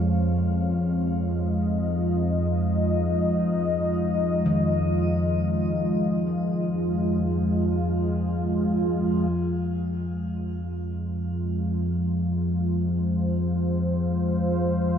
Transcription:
Already playing: synth drone F2 F3, analog synth pad F2 G#3 F4 C#5 F5
1.08 analog synth pad D#5
4.46 kettle gongs D#3
9.32 synth drone F2 F3
12.70 analog synth pad C5
13.66 analog synth pad F5

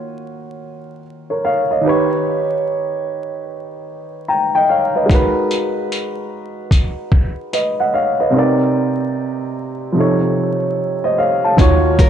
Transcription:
Already playing: upright piano D#3 A#3 F4 F#4 C#5
1.30 upright piano A#4 C#5
1.45 upright piano C#5 F5
1.71 upright piano D#5
1.81 upright piano D#3 D#4
1.85 upright piano G4 B4 C#5
4.28 upright piano G5 A#5
4.55 upright piano D#5 G5
4.69 upright piano C#5 F5
4.95 upright piano B4 D#5
5.06 upright piano G#3 D#4 F#4, kick
5.11 upright piano A#4 B4, closed hi-hat
5.51 closed hi-hat
5.92 closed hi-hat
6.71 kick, closed hi-hat
7.12 kick
7.53 upright piano B4 D#5, closed hi-hat
7.80 upright piano D#5 F#5
7.94 upright piano C#5 F5
8.20 upright piano B4 D#5
8.30 upright piano C3 C4 D#4
8.36 upright piano A#4 D5
9.92 upright piano C3 F3 D#4
9.98 upright piano A4 C#5
11.04 upright piano C5 D#5
11.18 upright piano C#5 F5
11.44 upright piano F5 A5
11.57 upright bass D#2, upright piano D#3 D#4 F4 F#4 C#5, kick, closed hi-hat
11.99 nylon-string guitar A#4, kick, closed hi-hat, shaker

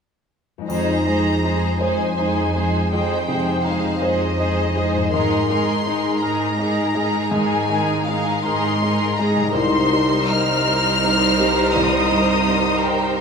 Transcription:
0.58 harp F2 G#3 D#4
0.65 grand piano F2, harp C5
0.69 cello section F2, viola section G#3 D#4, violin section G#4 C5 A#5, triangle
1.05 viola section G#3 D#4, grand piano G#3, violin section G#4 C5
1.43 viola section G#3 D#4, grand piano D#4, violin section G#4 C5
1.79 cello section F2, viola section G#3 D#4, violin section G#4 C5 G#5, grand piano C5
2.15 viola section G#3 D#4, violin section G#4 C5
2.19 grand piano D#4
2.54 viola section G#3 D#4, grand piano G#3, violin section G#4 C5
2.90 cello section F2, grand piano F2, viola section G#3 D#4, violin section G#4 C5 G5
3.26 grand piano C3, viola section G#3 D#4, violin section G#4 C5
3.63 viola section G#3 D#4, grand piano D#4, violin section G#4 C5 F5
3.99 cello section F2, viola section G#3 D#4, violin section G#4 C5 D#5, grand piano C5
4.36 viola section G#3 D#4, grand piano D#4, violin section G#4 C5
4.74 viola section G#3 D#4, grand piano G#3, violin section G#4 C5
4.95 harp G#2
5.00 harp G#3
5.04 harp D#4
5.09 viola section G#3 D#4, violin section G#4 A#4 C6, harp A#4
5.13 cello section G#2, grand piano G#2
5.48 viola section G#3 D#4, grand piano G#3, violin section G#4 A#4
5.85 viola section G#3 D#4, grand piano D#4, violin section G#4 A#4
6.21 cello section G#2, viola section G#3 D#4, violin section G#4 A#4 A#5, grand piano A#4
6.58 viola section G#3 D#4, grand piano D#4, violin section G#4 A#4
6.95 grand piano G#3, viola section G#3 D#4, violin section G#4 A#4
7.31 grand piano G#2, cello section G#2, viola section G#3 D#4, violin section G#4 A#4 G#5
7.69 grand piano D#3, viola section G#3 D#4, violin section G#4 A#4
8.06 viola section G#3 D#4, grand piano D#4, violin section G#4 F5
8.10 violin section A#4
8.43 cello section G#2, viola section G#3 D#4, violin section G#4 A#4 C6, grand piano A#4
8.80 viola section G#3 D#4, grand piano D#4, violin section G#4 A#4
9.16 viola section G#3 D#4, grand piano G#3, violin section G#4 A#5
9.20 violin section A#4
9.36 harp C3
9.41 harp G3
9.45 harp D#4
9.50 cello section C2, harp A#4
9.54 grand piano C2, viola section G3 D#4, violin section A#4 C5 C6
9.93 grand piano G3
10.28 grand piano D#4, violin section F6
10.68 grand piano A#4
11.05 grand piano D#4
11.40 grand piano G3
11.75 grand piano C2, violin section D#6
12.12 grand piano G2
12.48 grand piano D#4
12.84 grand piano A#4, violin section G5

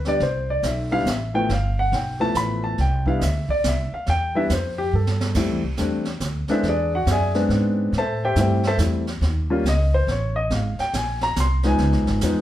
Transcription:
Already playing: upright bass D2
0.05 grand piano G3 B3 D4 G4 D5, snare
0.20 upright bass C2, grand piano C5, brush sweep, snare
0.50 grand piano D5
0.63 upright bass B1, grand piano E5, snare, hi-hat pedal
0.91 grand piano G3 B3 D4 E4 F5
1.06 upright bass A1, snare, hi-hat pedal
1.10 grand piano E5
1.34 grand piano F3 A3 B3 E4 G5
1.49 upright bass G1, grand piano F5, brush sweep, snare
1.79 grand piano F#5
1.92 upright bass B1, grand piano G5, snare
2.20 grand piano F3 A3 B3 E4 A5
2.35 upright bass A1, grand piano B5, snare, hi-hat pedal
2.64 grand piano A5
2.78 upright bass C2, grand piano G5, brush sweep, snare
3.06 grand piano G3 B3 D4 E4 F5, kick
3.19 upright bass D2, grand piano D#5, snare, hi-hat pedal
3.24 grand piano E5
3.49 grand piano D5, muted upright bass stroke, kick
3.64 upright bass C2, grand piano E5, snare, hi-hat pedal
3.92 grand piano F5, muted upright bass stroke
4.07 upright bass E2, grand piano G5, brush sweep, snare
4.35 grand piano G3 B3 D4 E4 E5
4.50 upright bass F2, grand piano C5, snare, hi-hat pedal
4.78 grand piano G4
4.93 upright bass G2, grand piano A4
5.07 snare
5.21 snare
5.35 upright bass F2, grand piano G3 A3 C4 E4, brush sweep, kick, snare, crash
5.50 upright bass E2
5.64 upright bass C2
5.77 upright bass E2, grand piano G3 A3 C4 D4, snare, hi-hat pedal
6.05 snare
6.20 upright bass D2, snare, hi-hat pedal
6.48 grand piano G#3 B3 C4 D4 E4 A4 C5 E5, muted upright bass stroke, snare
6.63 upright bass E2, brush sweep, snare
6.68 grand piano D4 G#4 B4 D5
6.95 grand piano F#4 F#5
7.06 upright bass F#2, snare, hi-hat pedal
7.11 grand piano G#4 D5 E5 G#5
7.34 grand piano G#3 B3 C4 D4, snare
7.49 upright bass G#2, snare
7.92 upright bass A2, brush sweep, snare
7.98 grand piano A4 C5 E5 A5
8.25 grand piano G4 C5 E5 G5
8.36 upright bass G2, grand piano G3 A3 C4 E4, snare, hi-hat pedal
8.40 grand piano G4 C5 E5 G5
8.63 grand piano C5 A5, snare
8.67 grand piano A4 E5
8.78 upright bass E2, grand piano G3 A3 C4 E4, snare, hi-hat pedal
9.07 snare
9.21 upright bass D#2, brush sweep, snare
9.50 grand piano G3 A#3 C#4 F4
9.64 upright bass C#2, snare, hi-hat pedal
9.69 grand piano D#5
9.94 grand piano C5
10.07 upright bass A1, snare
10.11 grand piano C#5
10.36 grand piano D#5
10.50 upright bass G#1, grand piano F5, brush sweep, snare
10.79 grand piano G5, muted upright bass stroke, snare
10.94 upright bass A#1, grand piano G#5, snare, hi-hat pedal
11.21 grand piano A#5, snare
11.36 upright bass C2, grand piano C6, snare, hi-hat pedal
11.63 grand piano F3 G#3 B3 D#4 G#5, snare
11.78 upright bass C#2, brush sweep, snare
11.92 upright bass B1, snare
12.07 upright bass G#1, snare
12.21 upright bass E2, grand piano F3 G#3 B3 D#4, snare, hi-hat pedal

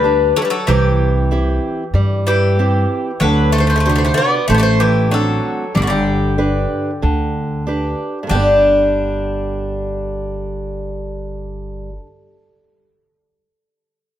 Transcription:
Already playing: upright bass D2, bouzouki G3 B4
0.04 steel-string acoustic guitar D4 G4 B4
0.36 bouzouki F#3 A4
0.42 bouzouki G3 B4
0.50 bouzouki F#3 A4
0.67 upright bass C2, steel-string acoustic guitar C3, bouzouki E3 G4
1.31 steel-string acoustic guitar C4 E4 G4
1.94 upright bass G2, steel-string acoustic guitar G3
2.27 bouzouki E3 G4
2.59 steel-string acoustic guitar C4 E4 G4
3.20 upright bass D2, steel-string acoustic guitar D3, bouzouki F#3 B4
3.52 bouzouki A3 C5
3.58 bouzouki A3 C5
3.67 bouzouki A3 C5
3.76 bouzouki A3 C5
3.80 bouzouki A3
3.86 steel-string acoustic guitar C3 D4 F#4, bouzouki A3 C5
3.91 bouzouki C5
3.95 bouzouki A3 C5
4.04 bouzouki A3 C5
4.14 bouzouki B3 D5
4.48 upright bass A1, bouzouki A3 C5, steel-string acoustic guitar A3
4.54 bouzouki B3 D5
4.60 bouzouki A3 C5
4.80 bouzouki E3 G4
5.11 bouzouki F#3 A4, steel-string acoustic guitar C4 D4 F#4
5.75 upright bass G1, bouzouki D3 G4, steel-string acoustic guitar G3
5.82 bouzouki D3 F#4
5.87 bouzouki D3 G4
6.38 steel-string acoustic guitar D4 G4 B4
7.02 upright bass D2, steel-string acoustic guitar D3
7.67 steel-string acoustic guitar D4 G4 B4
8.23 steel-string acoustic guitar G2
8.27 upright bass G1, steel-string acoustic guitar D3 G3, bouzouki D4 G4
8.35 steel-string acoustic guitar B3
8.39 steel-string acoustic guitar D4

